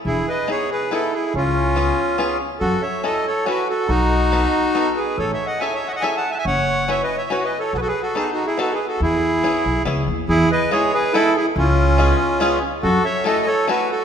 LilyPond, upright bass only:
\new Staff \with { instrumentName = "Upright bass" } { \clef bass \time 3/4 \key e \major \tempo 4 = 141 e,,8 r2 r8 | cis,2 r4 | fis,8 r2 r8 | b,,2 r4 |
a,,8 r2 r8 | fis,,2 r4 | b,,8 r2 r8 | e,4. b,,8 cis,8 dis,8 |
e,8 r2 r8 | cis,2 r4 | fis,8 r2 r8 | }